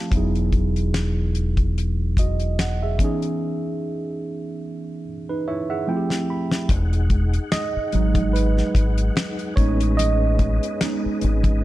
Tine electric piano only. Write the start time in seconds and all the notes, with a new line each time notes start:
Already playing: F3 A3 C4 E4 G4 F5 A5
0.10 F#3 B3 D#4
0.15 E4 G#4
2.19 F#4 D#5
2.60 F#5
2.83 G#4 E5
2.98 E3 B3 C#4
3.03 D#4 G#4
5.29 D#4 B4
5.48 E4 C#5 E5
5.70 G#4 E5 F#5
5.87 F3 A3 C4 E4 F4 G5
5.97 G4
6.30 B5
7.52 D#5
7.94 F#3 G#3 D#4
8.33 B4
9.56 G#3 B3 C#4 D#4 C#5
9.97 D#5
10.82 G#3 B3 C#4 D#4